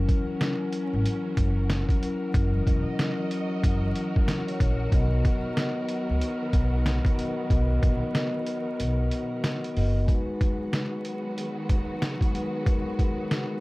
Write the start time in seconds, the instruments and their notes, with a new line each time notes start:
Already playing: string section E3 F#3 C#4 F#4 A#4, vibraphone F#3 C#4 E4 A#4
0.09 kick, closed hi-hat
0.39 vibraphone F#3 C#4 E4, snare, closed hi-hat
0.43 vibraphone A#4
0.73 closed hi-hat
0.93 upright bass G#1
1.06 closed hi-hat
1.37 upright bass F#1, kick, closed hi-hat
1.70 snare, closed hi-hat
1.89 kick, closed hi-hat
2.00 vibraphone F#3 C#4 E4, closed hi-hat
2.04 vibraphone A#4
2.32 upright bass F#1, vibraphone F#3 C#4 E4, string section D#5, kick, closed hi-hat
2.36 vibraphone A#4
2.67 upright bass E1, kick, closed hi-hat
2.97 vibraphone F#3 C#4 E4, snare, closed hi-hat
3.01 vibraphone A#4
3.31 closed hi-hat
3.63 upright bass F#1, kick, closed hi-hat
3.95 closed hi-hat
4.16 kick
4.27 vibraphone A#4, snare, closed hi-hat
4.48 vibraphone C#5, closed hi-hat
4.60 upright bass A#1, kick, closed hi-hat
4.79 vibraphone A#4
4.89 upright bass B1, string section D#3 B3, vibraphone B3 F#4 A#4, kick, closed hi-hat
4.94 vibraphone D#5
5.25 kick, closed hi-hat
5.54 vibraphone B3 F#4 A#4, snare, closed hi-hat
5.58 vibraphone D#5
5.89 closed hi-hat
6.09 upright bass C#2
6.21 closed hi-hat
6.53 upright bass B1, kick, closed hi-hat
6.86 snare, closed hi-hat
7.05 kick, closed hi-hat
7.16 vibraphone B3 F#4 A#4, closed hi-hat
7.20 vibraphone D#5
7.48 upright bass B1, vibraphone B3 F#4 A#4, kick, closed hi-hat
7.53 vibraphone D#5
7.83 upright bass A#1, kick, closed hi-hat
8.13 vibraphone B3 F#4 A#4, snare, closed hi-hat
8.17 vibraphone D#5
8.46 closed hi-hat
8.80 upright bass B1, closed hi-hat
9.11 closed hi-hat
9.44 snare, closed hi-hat
9.64 closed hi-hat
9.74 upright bass F#1, vibraphone B3 F#4 A#4, open hi-hat
9.78 vibraphone D#5
10.06 string section D#3 F#3 G#3 B3 F#4, vibraphone G#3 D#4 F#4, kick, closed hi-hat
10.11 vibraphone B4
10.41 kick, closed hi-hat
10.73 snare, closed hi-hat
11.05 closed hi-hat
11.38 closed hi-hat
11.69 kick, closed hi-hat
12.02 snare, closed hi-hat
12.21 kick, closed hi-hat
12.32 vibraphone G#3 D#4 F#4, closed hi-hat
12.36 vibraphone B4
12.64 vibraphone G#3 D#4 F#4, kick, closed hi-hat
12.68 vibraphone A#4
12.99 kick, closed hi-hat
13.31 snare, closed hi-hat